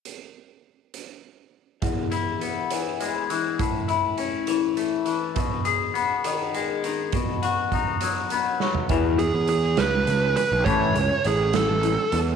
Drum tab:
HH |x-----x-----|x-x-x-x-x-x-|x-x-x-x-x-x-|x-x-x-x-x-x-|
SD |------------|------------|------------|------------|
FT |------------|------------|------------|------------|
BD |------------|o-----------|o-----------|o-----------|

HH |x-x-x-x-x---|x-x-x-x-x-x-|x-x-x-x-x-x-|
SD |----------o-|------o-----|------o-----|
FT |-----------o|------------|------------|
BD |o---o-------|o-----------|o-----------|